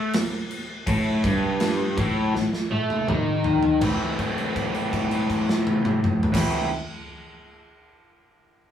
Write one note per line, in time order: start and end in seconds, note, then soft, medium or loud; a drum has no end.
0.00 0.12 A3 loud
0.13 snare loud
0.13 crash medium
0.51 crash medium
0.87 0.95 A1 loud
0.87 1.23 A2 loud
0.87 kick loud
0.87 crash medium
1.24 1.32 G1 medium
1.24 1.97 G2 loud
1.24 kick loud
1.24 crash medium
1.60 snare loud
1.60 crash medium
1.98 2.06 A1 loud
1.98 2.34 A2 loud
1.98 kick loud
1.98 crash medium
2.35 2.43 A1 medium
2.35 2.64 A2 medium
2.35 snare medium
2.53 snare medium
2.70 2.78 A2 medium
2.70 3.08 A3 loud
2.90 high tom medium
3.08 3.16 D#2 loud
3.08 3.81 D#3 loud
3.08 mid tom loud
3.44 floor tom medium
3.63 floor tom loud
3.81 3.90 A1 loud
3.81 6.32 A2 medium
3.81 6.33 E3 medium
3.81 6.34 A3 medium
3.81 6.35 C4 loud
3.81 kick loud
3.81 crash medium
3.86 6.36 E4 loud
4.19 kick medium
4.19 crash soft
4.38 crash soft
4.56 kick medium
4.56 crash soft
4.74 crash soft
4.93 kick medium
4.93 crash medium
5.11 crash medium
5.30 kick medium
5.30 crash medium
5.49 snare loud
5.67 high tom medium
5.85 mid tom medium
6.04 mid tom loud
6.23 floor tom loud
6.32 6.42 A1 loud
6.32 6.66 A2 medium
6.32 6.66 E3 medium
6.32 6.67 A3 medium
6.32 6.67 C4 loud
6.32 kick loud
6.32 snare loud
6.32 crash loud
6.36 6.68 E4 loud